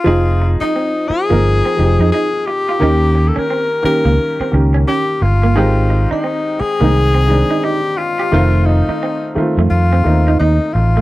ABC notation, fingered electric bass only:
X:1
M:4/4
L:1/16
Q:"Swing 16ths" 1/4=87
K:Fm
V:1 name="Fingered electric bass" clef=bass
F,,,3 z4 G,,,2 z F,,, F,, z4 | E,,3 z4 D,, z2 D,,2 z2 G,,,2 | A,,,3 z4 C,,4 z4 z | F,,,3 z4 F,, F,,2 E,,2 E,, z =A,,,2 |]